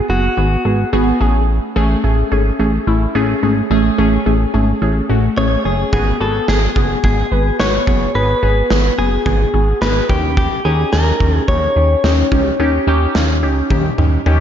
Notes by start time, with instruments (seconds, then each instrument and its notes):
0.09 analog synth bass F#1, synth pluck B3 F#4 G#4, clean electric guitar F#4
0.37 analog synth bass G#1, synth pluck B3 F#4 G#4
0.65 analog synth bass G#1, synth pluck B3 F#4 G#4
0.93 analog synth bass G#1, synth pluck B3 F#4 G#4
1.20 analog synth bass A1, synth pluck A3 C#4 G#4
1.76 analog synth bass A1, synth pluck A3 C#4 G#4
2.04 analog synth bass A1, synth pluck A3 C#4 G#4
2.32 analog synth bass G#1, synth pluck A3 C#4 G#4
2.59 analog synth bass A1, synth pluck A3 C#4 G#4
2.87 analog synth bass A1, synth pluck A3 C#4 E4
3.15 analog synth bass A1, synth pluck A3 C#4 G#4
3.43 analog synth bass G#1, synth pluck A3 C#4 G#4
3.70 analog synth bass A1, synth pluck A3 C#4 G#4
3.98 analog synth bass A1, synth pluck A3 C#4 G#4
4.26 analog synth bass A1, synth pluck A3 C#4 G#4
4.54 analog synth bass G#1, synth pluck A3 C#4 G#4
4.82 analog synth bass A1, synth pluck A3 C#4 G#4
5.09 analog synth bass A1, synth pluck A3 C#4 F#4
5.37 analog synth bass A1, synth pluck A3 C#4 G#4, clean electric guitar C#5
5.65 analog synth bass F#1, synth pluck A3 C#4 G#4, clean electric guitar G#4
5.93 analog synth bass G#1, synth pluck B3 F#4 G#4, clean electric guitar G#4, kick
6.20 analog synth bass G#1, synth pluck B3 F#4 G#4, clean electric guitar A4
6.48 analog synth bass G#1, synth pluck B3 F#4 G#4, clean electric guitar G#4, snare
6.76 analog synth bass F#1, synth pluck B3 F#4 G#4, kick
7.04 analog synth bass G#1, synth pluck B3 F#4 G#4, clean electric guitar G#4, kick
7.32 analog synth bass G#1, synth pluck B3 F#4 B4
7.60 analog synth bass G#1, synth pluck B3 F#4 B4, clean electric guitar C#5, snare
7.87 analog synth bass F#1, synth pluck B3 F#4 G#4, kick
8.15 analog synth bass G#1, synth pluck B3 F#4 G#4, clean electric guitar B4
8.43 analog synth bass G#1, synth pluck B3 F#4 G#4
8.70 analog synth bass G#1, synth pluck B3 F#4 G#4, snare
8.98 analog synth bass F#1, synth pluck B3 F#4 G#4, clean electric guitar G#4
9.26 analog synth bass G#1, synth pluck B3 F#4 G#4, kick
9.54 analog synth bass G#1, synth pluck B3 F#4 G#4
9.82 analog synth bass G#1, synth pluck B3 F#4 G#4, clean electric guitar B4, snare
10.09 analog synth bass D#2, synth pluck C#4 D#4 G4, clean electric guitar G4, kick
10.37 clean electric guitar G4, kick
10.65 analog synth bass D#2, synth pluck C#4 D#4 G4, clean electric guitar G#4
10.93 analog synth bass D#2, synth pluck C#4 D#4 G4, clean electric guitar A#4, snare
11.20 analog synth bass D#2, synth pluck C#4 D#4 G4, kick
11.38 clean electric guitar G#4
11.48 analog synth bass D#2, synth pluck C#4 D#4 G4, clean electric guitar C#5, kick
11.76 analog synth bass D#2, synth pluck C#4 D#4 G4
12.04 analog synth bass D#2, synth pluck C#4 D#4 G4, snare
12.32 analog synth bass C#2, synth pluck C#4 D#4 G4, kick
12.59 analog synth bass D#2, synth pluck C#4 D#4 G4
12.87 analog synth bass D#2, synth pluck C#4 D#4 G4
13.15 analog synth bass D#2, synth pluck C#4 D#4 F4, snare
13.43 analog synth bass C#2, synth pluck C#4 D#4 G4
13.70 analog synth bass D#2, synth pluck C#4 D#4 G4, kick, high tom
13.98 analog synth bass D#2, synth pluck C#4 D#4 G4, mid tom
14.26 analog synth bass D#2, synth pluck C#4 D#4 G4, mid tom